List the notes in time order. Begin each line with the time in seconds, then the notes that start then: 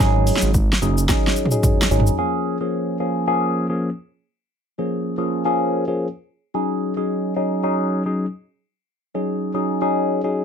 0.00 G#1 F#3 C#4 D#4 G#4, kick, snare, shaker
0.27 open hi-hat, shaker
0.36 snare
0.42 G#1, shaker
0.54 kick, shaker
0.73 snare
0.82 F#1 F#3 C#4 D#4 G#4, shaker
0.98 shaker
1.09 F#3 C#4 D#4 G#4, kick, snare, shaker
1.27 snare
1.36 shaker
1.45 mid tom
1.51 F#3 C#4 D#4 G#4, shaker
1.63 kick, floor tom, shaker
1.82 snare
1.91 G#1 F#3 C#4 D#4 G#4, shaker
2.00 floor tom
2.07 shaker
2.18 F3 A#3 C#4 G#4
2.60 F3 A#3 C#4 G#4
3.00 F3 A#3 C#4 G#4
3.27 F3 A#3 C#4 G#4
3.69 F3 A#3 C#4 G#4
4.78 F3 A#3 C#4 G#4
5.18 F3 A#3 C#4 G#4
5.45 F3 A#3 C#4 G#4
5.87 F3 A#3 C#4 G#4
6.54 F#3 C#4 D#4 G#4
6.97 F#3 C#4 D#4 G#4
7.36 F#3 C#4 D#4 G#4
7.63 F#3 C#4 D#4 G#4
8.05 F#3 C#4 D#4 G#4
9.14 F#3 C#4 D#4 G#4
9.54 F#3 C#4 D#4 G#4
9.81 F#3 C#4 D#4 G#4
10.24 F#3 C#4 D#4 G#4